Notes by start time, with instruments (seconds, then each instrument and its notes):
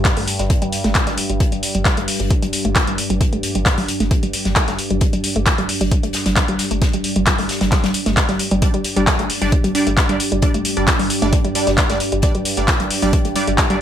Already playing: synth drone G2, ambient pad D4 G4 D5
0.05 kick, snare, clap, closed hi-hat
0.16 sub bass G1, synth arpeggio sound A3, closed hi-hat, open hi-hat
0.28 closed hi-hat, open hi-hat
0.39 sub bass G1, synth arpeggio sound G3, snare, closed hi-hat
0.50 kick, closed hi-hat
0.62 sub bass G1, synth arpeggio sound G3, closed hi-hat
0.72 closed hi-hat, open hi-hat
0.84 sub bass G1, synth arpeggio sound A3, snare, closed hi-hat
0.95 kick, snare, clap, closed hi-hat
1.07 sub bass G1, synth arpeggio sound G3, snare, closed hi-hat
1.17 closed hi-hat, open hi-hat
1.29 sub bass G1, synth arpeggio sound G3, closed hi-hat
1.40 kick, closed hi-hat
1.52 sub bass G1, synth arpeggio sound G3, closed hi-hat
1.63 closed hi-hat, open hi-hat
1.75 sub bass G1, synth arpeggio sound G3, closed hi-hat
1.85 kick, snare, clap, closed hi-hat
1.97 sub bass G1, synth arpeggio sound A3, closed hi-hat
2.08 open hi-hat
2.20 sub bass G1, synth arpeggio sound G3, closed hi-hat
2.31 kick, closed hi-hat
2.42 sub bass G1, synth arpeggio sound G3, closed hi-hat
2.53 closed hi-hat, open hi-hat
2.65 sub bass G1, synth arpeggio sound A3, closed hi-hat
2.75 kick, snare, clap, closed hi-hat
2.87 sub bass G1, synth arpeggio sound G3, closed hi-hat
2.98 closed hi-hat, open hi-hat
3.10 sub bass G1, synth arpeggio sound G3, closed hi-hat
3.21 kick, closed hi-hat
3.33 sub bass G1, synth arpeggio sound A3, closed hi-hat
3.43 closed hi-hat, open hi-hat
3.55 sub bass G1, synth arpeggio sound G3, closed hi-hat
3.66 kick, snare, clap, closed hi-hat
3.78 sub bass G1, synth arpeggio sound G3, closed hi-hat, open hi-hat
3.88 closed hi-hat, open hi-hat
4.00 sub bass G1, synth arpeggio sound A3, snare, closed hi-hat
4.11 kick, closed hi-hat
4.23 sub bass G1, synth arpeggio sound G3, closed hi-hat
4.33 closed hi-hat, open hi-hat
4.45 sub bass G1, synth arpeggio sound G3, snare, closed hi-hat
4.56 kick, snare, clap, closed hi-hat
4.68 sub bass G1, synth arpeggio sound A3, snare, closed hi-hat
4.79 closed hi-hat, open hi-hat
4.90 sub bass G1, synth arpeggio sound G3, closed hi-hat
5.01 kick, closed hi-hat
5.13 sub bass G1, synth arpeggio sound G3, closed hi-hat
5.24 closed hi-hat, open hi-hat
5.36 sub bass G1, synth arpeggio sound A3, closed hi-hat
5.46 kick, snare, clap, closed hi-hat
5.58 sub bass G1, synth arpeggio sound G3, closed hi-hat
5.69 open hi-hat
5.81 sub bass G1, synth arpeggio sound G3, closed hi-hat
5.91 kick, closed hi-hat
6.03 sub bass G1, synth arpeggio sound A3, closed hi-hat
6.13 snare, closed hi-hat, open hi-hat
6.26 sub bass G1, synth arpeggio sound G3, snare, closed hi-hat
6.36 kick, snare, clap, closed hi-hat
6.48 sub bass G1, synth arpeggio sound G3, closed hi-hat
6.59 snare, closed hi-hat, open hi-hat
6.71 sub bass G1, synth arpeggio sound A3, closed hi-hat
6.82 kick, snare, closed hi-hat
6.93 sub bass G1, synth arpeggio sound G3, closed hi-hat
7.04 open hi-hat
7.16 sub bass G1, synth arpeggio sound G3, closed hi-hat
7.26 kick, snare, clap, closed hi-hat
7.38 sub bass G1, synth arpeggio sound A3, closed hi-hat, open hi-hat
7.49 snare, closed hi-hat, open hi-hat
7.61 sub bass G1, synth arpeggio sound G3, snare, closed hi-hat
7.72 kick, snare, clap, closed hi-hat
7.84 sub bass G1, synth arpeggio sound G3, snare, closed hi-hat
7.94 closed hi-hat, open hi-hat
8.06 sub bass G1, synth arpeggio sound A3, snare, closed hi-hat
8.16 kick, snare, clap, closed hi-hat
8.29 sub bass G1, synth arpeggio sound G3, snare, closed hi-hat
8.39 closed hi-hat, open hi-hat
8.51 sub bass G1, synth arpeggio sound G3, closed hi-hat
8.62 synth drone G2, supersaw synth G3 D4 D5, kick, closed hi-hat
8.74 sub bass G1, synth arpeggio sound G3, closed hi-hat
8.84 closed hi-hat, open hi-hat
8.96 sub bass G1, synth arpeggio sound G3, supersaw synth G3 D4 D5, closed hi-hat
9.07 kick, snare, clap, closed hi-hat
9.19 sub bass G1, synth arpeggio sound A3, closed hi-hat
9.30 open hi-hat
9.42 sub bass G1, supersaw synth G3 D4 D5, synth arpeggio sound G3, closed hi-hat
9.52 kick, closed hi-hat
9.64 sub bass G1, synth arpeggio sound G3, closed hi-hat
9.75 supersaw synth G3 D4 D5, closed hi-hat, open hi-hat
9.87 sub bass G1, synth arpeggio sound A3, closed hi-hat
9.97 kick, snare, clap, closed hi-hat
10.09 sub bass G1, supersaw synth G3 D4 D5, synth arpeggio sound G3, closed hi-hat
10.20 closed hi-hat, open hi-hat
10.32 sub bass G1, synth arpeggio sound G3, closed hi-hat
10.42 supersaw synth G3 D4 D5, kick, closed hi-hat
10.54 sub bass G1, synth arpeggio sound A3, closed hi-hat
10.65 closed hi-hat, open hi-hat
10.77 sub bass G1, synth arpeggio sound G3, supersaw synth G3 D4 D5, closed hi-hat
10.88 kick, snare, clap, closed hi-hat
10.99 sub bass G1, synth arpeggio sound G3, closed hi-hat, open hi-hat
11.10 closed hi-hat, open hi-hat
11.22 sub bass G1, supersaw synth G3 D4 D5, synth arpeggio sound A3, snare, closed hi-hat
11.33 kick, closed hi-hat
11.45 sub bass G1, synth arpeggio sound G3, closed hi-hat
11.55 supersaw synth G3 D4 D5, closed hi-hat, open hi-hat
11.67 sub bass G1, synth arpeggio sound G3, snare, closed hi-hat
11.77 kick, snare, clap, closed hi-hat
11.90 sub bass G1, supersaw synth G3 D4 D5, synth arpeggio sound A3, snare, closed hi-hat
12.00 closed hi-hat, open hi-hat
12.12 sub bass G1, synth arpeggio sound G3, closed hi-hat
12.22 supersaw synth G3 D4 D5, kick, closed hi-hat
12.35 sub bass G1, synth arpeggio sound G3, closed hi-hat
12.45 closed hi-hat, open hi-hat
12.57 sub bass G1, supersaw synth G3 D4 D5, synth arpeggio sound A3, closed hi-hat
12.68 kick, snare, clap, closed hi-hat
12.80 sub bass G1, synth arpeggio sound G3, closed hi-hat
12.90 open hi-hat
13.02 sub bass G1, supersaw synth G3 D4 D5, synth arpeggio sound G3, closed hi-hat
13.13 kick, closed hi-hat
13.25 sub bass G1, synth arpeggio sound A3, closed hi-hat
13.35 supersaw synth G3 D4 D5, closed hi-hat, open hi-hat
13.47 sub bass G1, synth arpeggio sound G3, closed hi-hat
13.58 kick, snare, clap, closed hi-hat
13.70 sub bass G1, synth arpeggio sound G3, supersaw synth G3 D4 D5, closed hi-hat